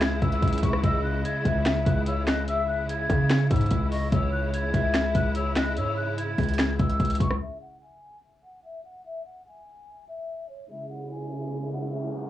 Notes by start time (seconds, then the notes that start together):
Already playing: C#2 C#3 G#3 E4 G#6
0.01 finger snap, snare, closed hi-hat
0.22 C#2 E6, kick, closed hi-hat
0.32 closed hi-hat
0.42 C#2, kick, closed hi-hat
0.48 closed hi-hat
0.53 closed hi-hat
0.58 closed hi-hat
0.63 C#2 C#6, kick, closed hi-hat
0.73 cross-stick
0.83 C#2 D#5 E6, kick, closed hi-hat
1.04 F#6
1.24 G#6, closed hi-hat
1.45 C#2 E5, kick, closed hi-hat
1.66 finger snap, snare, closed hi-hat
1.86 C#2 F#6, kick, closed hi-hat
2.06 C#5 E6, closed hi-hat
2.27 D#5 F#6, finger snap, snare, closed hi-hat
2.48 E5 E6, closed hi-hat
2.68 F#6
2.89 G#6, closed hi-hat
3.09 C#3, kick, closed hi-hat
3.30 finger snap, snare, closed hi-hat
3.51 G#2 E6, kick, closed hi-hat
3.56 closed hi-hat
3.61 closed hi-hat
3.66 closed hi-hat
3.71 C#2, kick, closed hi-hat
3.91 D#5 C#6, open hi-hat
4.12 C#2 G#3 E4 C#5 E6, kick, closed hi-hat
4.32 F#6
4.54 G#6, closed hi-hat
4.74 C#2 E5, kick, closed hi-hat
4.94 finger snap, snare, closed hi-hat
5.15 C#2 F#6, kick, closed hi-hat
5.35 C#5 E6, closed hi-hat
5.56 D#5 F#6, finger snap, snare, closed hi-hat
5.76 G#2 C#5 E6, closed hi-hat
5.97 F#6
6.18 G#6, closed hi-hat
6.38 C#2, kick, closed hi-hat, open hi-hat
6.43 closed hi-hat
6.49 closed hi-hat
6.54 closed hi-hat
6.59 finger snap, snare, closed hi-hat
6.79 C#2 E6, kick, closed hi-hat
6.90 closed hi-hat
7.00 C#2, kick, closed hi-hat
7.05 closed hi-hat
7.10 closed hi-hat
7.15 closed hi-hat
7.20 C#2 C#6, kick, closed hi-hat
7.31 cross-stick
7.41 E5
7.62 F#5
7.82 G#5
8.44 F#5
8.64 E5
8.84 F#5
9.05 E5
9.26 F#5
9.47 G#5
10.08 E5
10.49 C#5
10.70 C#3 G#3 E4 E5, riser
10.90 F#5
11.11 G#5
11.73 F#5
11.93 E5
12.14 F#5